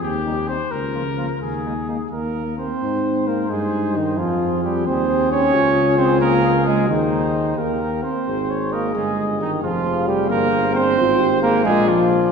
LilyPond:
<<
  \new Staff \with { instrumentName = "Cornet" } { \time 6/8 \key aes \major \tempo 4. = 88 g'4 c''8 bes'4. | aes'4. r4. | c''2. | aes'4. aes'4. |
aes'2. | c''4. bes'4 r8 | c''8 des''8 ees''2 | f''4. c''4. |
\key f \dorian c''4. d''4. | }
  \new Staff \with { instrumentName = "Trumpet" } { \time 6/8 \key aes \major r8 ees'8 ees'8 r8 f'8 f'8 | r8 ees'8 ees'8 bes'4 c''8~ | c''4 bes'8 aes'4 ees'8 | f'4 g'8 c''4 des''8~ |
des''4 c''8 bes'4 aes'8 | ees'4. bes'4 c''8~ | c''4 bes'8 aes'4 ees'8 | f'4 g'8 bes'4 c''8~ |
\key f \dorian c''4 bes'8 aes'8 f'4 | }
  \new Staff \with { instrumentName = "French horn" } { \time 6/8 \key aes \major r8 c'8 c'8 r8 bes8 bes8 | r8 bes8 bes8 r8 bes8 bes8 | ees'4. ees'4. | f'4. g'4. |
f'2. | aes'4. g'4 r8 | aes'2. | aes'2. |
\key f \dorian f'8 g'8 aes'8 f'4. | }
  \new Staff \with { instrumentName = "Euphonium" } { \clef bass \time 6/8 \key aes \major r8 g8 g8 r8 f8 f8 | r8 aes8 aes8 bes4 c'8~ | c'4 bes8 aes4 ees8 | f4 g8 c'4 des'8~ |
des'4 c'8 bes4 aes8 | ees4. bes4 c'8~ | c'4 bes8 aes4 ees8 | f4 g8 bes4 c'8~ |
\key f \dorian c'4 bes8 aes8 f4 | }
  \new Staff \with { instrumentName = "Tuba" } { \clef bass \time 6/8 \key aes \major ees,4. des,4. | ees,4. ees,4. | aes,4. g,4. | f,4. ees,4. |
des,2. | ees,4. ees,4 r8 | aes,,4. g,,4. | f,,4. g,,4. |
\key f \dorian aes,,4. bes,,4. | }
>>